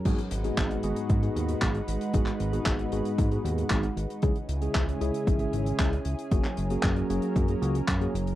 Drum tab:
CC |x---------------|----------------|----------------|----------------|
HH |xxxxxxxxxxxxxxxx|xxxxxxxxxxxxxxxx|xxxxxxxxxxxxxxxx|xxxxxxxxxxxxxxxx|
CP |----x-------x---|-x--x-------x---|----x-------x---|-x--x-------x---|
BD |o---o---o---o---|o---o---o---o---|o---o---o---o---|o---o---o---o---|